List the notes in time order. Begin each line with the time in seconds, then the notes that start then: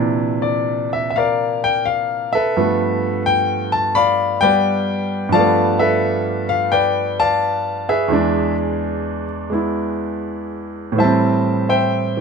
Already playing: A#2 C3 E3 D4
0.42 D5
0.93 E5
1.11 E5
1.16 A#4 D5 F5
1.64 G5
1.86 F5
2.33 A4 B4 E5
2.57 G2 F3 A3 B3
3.26 G5
3.72 A5
3.95 D5 F5 B5
4.41 G3 B4 D5 G5
4.45 B3
5.29 G2 F3 A5
5.34 A3 D5 F5
5.39 B3
5.79 A4 B4 E5
6.49 F5
6.72 B4 D5 G5
7.20 D5 F5 A5
7.89 G#4 B4 E5
8.08 E2 E3 G#3
8.13 D4
9.50 G#3 B3 E4
10.92 A2 E3
10.98 G3 C5 E5 A5
11.04 C4
11.69 C5 E5 G5
12.17 E3